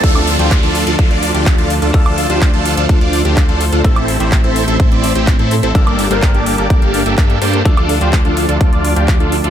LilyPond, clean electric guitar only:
\new Staff \with { instrumentName = "Clean electric guitar" } { \time 4/4 \key d \minor \tempo 4 = 126 <f a d' a'>8. <f a d' c''>2.~ <f a d' c''>16 | <f a d' a'>8. <f a d' c''>2.~ <f a d' c''>16 | <a, e a c' a'>8. <a, e a c' c''>2.~ <a, e a c' c''>16 | <g, g bes d' a'>8. <g, g bes d' bes'>2.~ <g, g bes d' bes'>16 |
<f a d' a'>8. <f a d' c''>2.~ <f a d' c''>16 | }